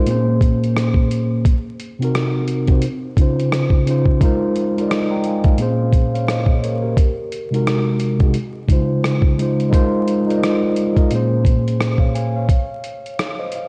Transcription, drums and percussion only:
0.06 closed hi-hat
0.41 kick, closed hi-hat
0.64 closed hi-hat
0.77 cross-stick, closed hi-hat
0.94 kick
1.11 closed hi-hat
1.45 kick, closed hi-hat
1.80 closed hi-hat
2.02 closed hi-hat
2.15 cross-stick, closed hi-hat
2.48 closed hi-hat
2.67 kick, closed hi-hat
2.82 closed hi-hat
3.17 kick, closed hi-hat
3.39 closed hi-hat
3.52 cross-stick, closed hi-hat
3.70 kick
3.87 closed hi-hat
4.06 kick
4.21 kick, closed hi-hat
4.56 closed hi-hat
4.78 closed hi-hat
4.91 cross-stick, closed hi-hat
5.24 closed hi-hat
5.44 kick, closed hi-hat
5.58 closed hi-hat
5.93 kick, closed hi-hat
6.15 closed hi-hat
6.28 cross-stick, closed hi-hat
6.46 kick
6.64 closed hi-hat
6.97 kick, closed hi-hat
7.32 closed hi-hat
7.54 closed hi-hat
7.67 cross-stick, closed hi-hat
8.00 closed hi-hat
8.20 kick, closed hi-hat
8.34 closed hi-hat
8.68 kick, closed hi-hat
9.04 cross-stick, closed hi-hat
9.22 kick
9.39 closed hi-hat
9.60 closed hi-hat
9.73 kick, closed hi-hat
10.08 closed hi-hat
10.30 closed hi-hat
10.43 cross-stick, closed hi-hat
10.76 closed hi-hat
10.97 kick, closed hi-hat
11.11 closed hi-hat
11.45 kick, closed hi-hat
11.68 closed hi-hat
11.80 cross-stick, closed hi-hat
11.98 kick
12.15 closed hi-hat
12.49 kick, closed hi-hat
12.84 closed hi-hat
13.06 closed hi-hat
13.19 cross-stick, closed hi-hat
13.52 closed hi-hat

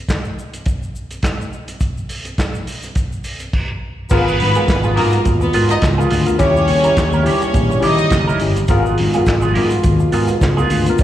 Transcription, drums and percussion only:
0.09 kick, snare, clap, closed hi-hat, shaker
0.24 shaker
0.39 shaker
0.53 closed hi-hat, shaker
0.66 kick, closed hi-hat, shaker
0.83 shaker
0.95 shaker
1.11 closed hi-hat, shaker
1.23 kick, snare, clap, closed hi-hat, shaker
1.41 shaker
1.53 shaker
1.68 closed hi-hat, shaker
1.80 kick, closed hi-hat, shaker
1.97 shaker
2.09 open hi-hat, shaker
2.25 closed hi-hat, shaker
2.38 kick, snare, clap, closed hi-hat, shaker
2.55 shaker
2.67 open hi-hat, shaker
2.83 closed hi-hat, shaker
2.95 kick, closed hi-hat, shaker
3.12 shaker
3.24 open hi-hat, shaker
3.39 closed hi-hat, shaker
3.53 kick, crash
4.10 kick, crash, shaker
4.28 shaker
4.40 open hi-hat
4.55 closed hi-hat, shaker
4.68 kick, snare, clap, closed hi-hat, shaker
4.83 shaker
4.97 open hi-hat
5.12 closed hi-hat, shaker
5.25 kick, closed hi-hat, shaker
5.41 shaker
5.53 open hi-hat, shaker
5.69 closed hi-hat, shaker
5.82 kick, snare, clap, closed hi-hat, shaker
6.01 shaker
6.10 open hi-hat, shaker
6.26 closed hi-hat, shaker
6.39 kick, closed hi-hat, shaker
6.56 shaker
6.68 open hi-hat
6.84 closed hi-hat, shaker
6.97 kick, snare, clap, closed hi-hat, shaker
7.13 shaker
7.26 open hi-hat
7.42 closed hi-hat, shaker
7.54 kick, closed hi-hat, shaker
7.71 shaker
7.82 open hi-hat, shaker
7.98 closed hi-hat, shaker
8.10 kick, snare, clap, closed hi-hat, shaker
8.29 shaker
8.39 open hi-hat, shaker
8.56 closed hi-hat, shaker
8.68 kick, closed hi-hat, shaker
8.86 shaker
8.98 open hi-hat
9.13 closed hi-hat, shaker
9.26 kick, snare, clap, closed hi-hat, shaker
9.42 shaker
9.55 open hi-hat
9.70 closed hi-hat, shaker
9.83 kick, closed hi-hat, shaker
10.00 shaker
10.12 open hi-hat, shaker
10.27 closed hi-hat, shaker
10.41 kick, snare, clap, closed hi-hat, shaker
10.58 shaker
10.70 open hi-hat, shaker
10.86 closed hi-hat, shaker
10.98 kick, closed hi-hat, shaker

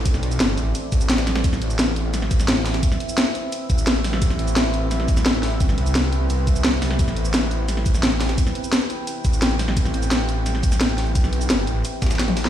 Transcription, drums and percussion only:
0.06 kick, closed hi-hat, shaker
0.14 snare, shaker
0.23 closed hi-hat
0.32 closed hi-hat, shaker
0.40 snare, closed hi-hat, shaker
0.49 closed hi-hat
0.58 closed hi-hat, shaker
0.75 closed hi-hat, shaker
0.92 kick, closed hi-hat, shaker
1.01 closed hi-hat, shaker
1.10 snare, closed hi-hat, shaker
1.18 snare, closed hi-hat
1.27 snare, closed hi-hat, shaker
1.36 snare, closed hi-hat
1.44 kick, closed hi-hat, shaker
1.53 snare, shaker
1.62 closed hi-hat
1.70 closed hi-hat, shaker
1.79 snare, closed hi-hat, shaker
1.96 closed hi-hat
2.14 snare, closed hi-hat, shaker
2.22 snare
2.31 kick, closed hi-hat, shaker
2.40 snare, shaker
2.48 snare, closed hi-hat
2.57 closed hi-hat
2.66 snare, closed hi-hat, open hi-hat
2.74 snare, closed hi-hat
2.83 kick, closed hi-hat, shaker
2.92 snare, shaker
3.00 closed hi-hat
3.09 closed hi-hat, shaker
3.18 snare, closed hi-hat, shaker
3.26 closed hi-hat
3.35 closed hi-hat
3.52 closed hi-hat, shaker
3.70 kick, closed hi-hat, shaker
3.78 closed hi-hat, shaker
3.87 snare, closed hi-hat
3.96 closed hi-hat
4.04 snare, closed hi-hat, open hi-hat, shaker
4.13 snare
4.22 kick, closed hi-hat, shaker
4.30 snare, shaker
4.39 closed hi-hat
4.48 closed hi-hat, shaker
4.56 snare, closed hi-hat, shaker
4.74 closed hi-hat
4.91 snare, closed hi-hat, shaker
5.00 snare
5.08 kick, closed hi-hat, shaker
5.17 snare, shaker
5.26 snare, closed hi-hat
5.34 closed hi-hat
5.43 snare, closed hi-hat, open hi-hat
5.52 closed hi-hat
5.60 kick, closed hi-hat, shaker
5.69 snare, shaker
5.78 closed hi-hat
5.86 closed hi-hat, shaker
5.95 snare, closed hi-hat, shaker
6.04 closed hi-hat
6.13 closed hi-hat
6.30 closed hi-hat, shaker
6.47 kick, closed hi-hat, shaker
6.56 closed hi-hat, shaker
6.65 snare, closed hi-hat
6.73 closed hi-hat
6.82 snare, closed hi-hat, open hi-hat, shaker
6.91 snare
6.99 kick, closed hi-hat, shaker
7.08 snare, shaker
7.17 closed hi-hat
7.25 closed hi-hat, shaker
7.34 snare, closed hi-hat, shaker
7.51 closed hi-hat
7.68 snare, closed hi-hat, shaker
7.77 snare
7.86 kick, closed hi-hat, shaker
7.95 snare, shaker
8.03 snare, closed hi-hat
8.12 closed hi-hat
8.20 snare, closed hi-hat, open hi-hat
8.29 snare, closed hi-hat
8.38 kick, closed hi-hat, shaker
8.47 snare, shaker
8.55 closed hi-hat
8.64 closed hi-hat, shaker
8.73 snare, closed hi-hat, shaker
8.81 closed hi-hat
8.90 closed hi-hat
9.07 closed hi-hat, shaker
9.25 kick, closed hi-hat, shaker
9.33 closed hi-hat, shaker
9.42 snare, closed hi-hat
9.51 closed hi-hat
9.59 snare, closed hi-hat, open hi-hat, shaker
9.68 snare
9.77 kick, closed hi-hat, shaker
9.85 snare, shaker
9.94 closed hi-hat
10.03 closed hi-hat, shaker
10.11 snare, closed hi-hat, shaker
10.29 closed hi-hat
10.46 snare, closed hi-hat, shaker
10.55 snare
10.63 kick, closed hi-hat, shaker
10.72 snare, shaker
10.81 snare, closed hi-hat
10.89 closed hi-hat
10.98 snare, closed hi-hat, open hi-hat
11.07 closed hi-hat
11.15 kick, closed hi-hat, shaker
11.24 snare, shaker
11.33 closed hi-hat
11.41 closed hi-hat, shaker
11.50 snare, closed hi-hat, shaker
11.59 closed hi-hat
11.67 closed hi-hat, shaker
11.85 closed hi-hat, shaker
12.02 kick, snare, closed hi-hat, shaker
12.06 snare, closed hi-hat
12.11 snare, closed hi-hat, shaker
12.15 snare, closed hi-hat
12.19 snare, closed hi-hat, shaker
12.28 closed hi-hat, high tom
12.37 snare, closed hi-hat, open hi-hat, shaker
12.45 snare

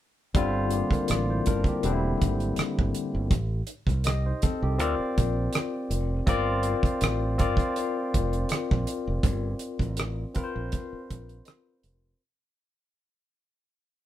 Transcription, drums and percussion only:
0.35 kick, closed hi-hat
0.70 closed hi-hat
0.91 kick, closed hi-hat
1.08 cross-stick, closed hi-hat
1.46 kick, closed hi-hat
1.64 kick, closed hi-hat
1.83 closed hi-hat
2.22 kick, closed hi-hat
2.40 closed hi-hat
2.56 cross-stick, closed hi-hat
2.79 kick
2.95 closed hi-hat
3.31 kick, closed hi-hat
3.67 closed hi-hat
3.87 kick, closed hi-hat
4.04 cross-stick, closed hi-hat
4.42 kick, closed hi-hat
4.80 closed hi-hat
5.18 kick, closed hi-hat
5.53 cross-stick, closed hi-hat
5.91 closed hi-hat
6.27 kick, closed hi-hat
6.63 closed hi-hat
6.83 kick, closed hi-hat
7.01 cross-stick, closed hi-hat
7.39 kick, closed hi-hat
7.57 kick, closed hi-hat
7.76 closed hi-hat
8.14 kick, closed hi-hat
8.33 closed hi-hat
8.49 cross-stick, closed hi-hat
8.71 kick
8.87 closed hi-hat
9.23 kick, closed hi-hat
9.59 closed hi-hat
9.79 kick, closed hi-hat
9.97 cross-stick, closed hi-hat
10.35 kick, closed hi-hat
10.72 kick, closed hi-hat
11.11 kick, closed hi-hat
11.29 closed hi-hat
11.45 cross-stick, closed hi-hat
11.83 closed hi-hat

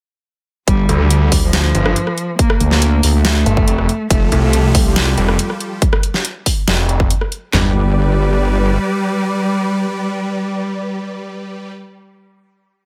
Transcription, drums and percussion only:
0.68 kick, closed hi-hat
0.89 closed hi-hat
1.10 closed hi-hat
1.32 kick, open hi-hat
1.53 snare, closed hi-hat
1.75 closed hi-hat
1.86 cross-stick
1.96 closed hi-hat
2.07 cross-stick
2.18 closed hi-hat
2.39 kick, closed hi-hat
2.50 cross-stick
2.60 closed hi-hat
2.71 snare
2.82 closed hi-hat
3.03 open hi-hat
3.25 snare, closed hi-hat
3.46 closed hi-hat
3.57 kick
3.68 closed hi-hat
3.78 cross-stick
3.89 closed hi-hat
4.10 kick, closed hi-hat
4.32 closed hi-hat
4.53 closed hi-hat
4.75 kick, open hi-hat
4.96 snare, closed hi-hat
5.18 closed hi-hat
5.28 cross-stick
5.39 closed hi-hat
5.50 cross-stick
5.60 closed hi-hat
5.82 kick, closed hi-hat
5.93 cross-stick
6.03 closed hi-hat
6.14 snare
6.25 closed hi-hat
6.46 kick, open hi-hat
6.68 snare, closed hi-hat
6.89 closed hi-hat
7.00 kick
7.10 closed hi-hat
7.21 cross-stick
7.32 closed hi-hat
7.53 snare, clap, floor tom

